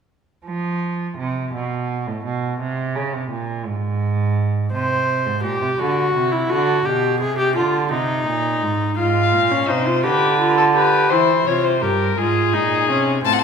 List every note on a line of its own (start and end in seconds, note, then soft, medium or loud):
0.45 1.13 F3 medium
1.17 1.53 C3 medium
1.53 2.08 B2 medium
2.07 2.24 A2 medium
2.24 2.60 B2 medium
2.60 2.97 C3 medium
2.95 3.15 C#3 medium
3.13 3.30 C3 medium
3.31 3.68 A#2 medium
3.66 4.72 G#2 medium
4.72 5.27 C3 medium
4.72 5.39 C5 medium
5.26 5.45 G#2 medium
5.43 5.61 A#2 medium
5.43 5.80 G4 medium
5.61 5.68 C3 medium
5.79 6.14 D3 medium
5.79 6.33 F#4 medium
6.14 6.49 C3 medium
6.32 6.51 E4 medium
6.50 6.84 D3 medium
6.50 6.87 F#4 medium
6.85 7.22 B2 medium
6.85 7.19 G4 medium
7.20 7.58 C3 medium
7.20 7.37 G#4 medium
7.38 7.55 G4 medium
7.55 7.92 D3 medium
7.55 7.90 F4 medium
7.91 8.26 C3 medium
7.91 8.95 D#4 medium
8.26 8.63 A#2 medium
8.62 8.97 G#2 medium
8.97 9.35 G#2 medium
8.97 9.52 F4 medium
8.97 9.70 F5 medium
9.33 9.68 A#2 medium
9.51 9.70 C#4 medium
9.68 10.05 C3 medium
9.68 9.87 D#4 medium
9.68 10.04 C5 medium
9.86 10.05 F4 medium
10.03 11.12 D3 medium
10.03 10.39 G4 medium
10.03 10.57 B4 medium
10.39 10.74 F4 medium
10.58 10.65 A4 medium
10.75 11.12 G4 medium
10.75 11.12 B4 medium
11.10 11.46 E3 medium
11.10 11.47 E4 medium
11.10 11.48 C5 medium
11.46 11.83 C3 medium
11.46 11.82 F4 medium
11.46 11.66 C#5 medium
11.64 11.83 C5 medium
11.82 12.17 G2 medium
11.82 12.17 G4 medium
11.82 12.19 A#4 medium
12.17 12.55 G#2 medium
12.17 12.55 F4 medium
12.17 13.24 G#4 medium
12.53 12.90 A#2 medium
12.53 12.89 D#4 medium
12.89 13.24 C3 medium
12.89 13.25 C#4 medium
13.25 13.44 A2 medium
13.25 13.44 C4 medium
13.25 13.44 F4 medium
13.25 13.34 A5 medium
13.33 13.41 F#5 medium
13.39 13.44 A5 medium